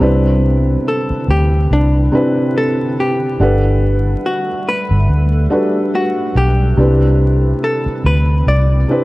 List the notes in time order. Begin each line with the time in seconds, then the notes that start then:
Already playing: G4
0.00 C2 C3 D3 C4 D4 E4 B4
0.88 A4
1.10 muted fingered electric bass stroke
1.28 D2 G4
1.70 C2 D4
2.12 C3 C4 D4 E4 B4
2.58 A4
3.00 G4
3.39 G1 G3 A3 D4 A4 B4 F#5
4.26 F#4
4.69 B4
4.91 G1
5.09 D2
5.50 G3 D4 F#4 A4 B4
5.95 F#4
6.35 B1 G4
6.77 C2 C3 D3 C4 D4 E4 B4
7.64 A4
7.86 muted fingered electric bass stroke
8.04 D2 B4
8.47 C2 D5
8.88 C3 C4 D4 E4 B4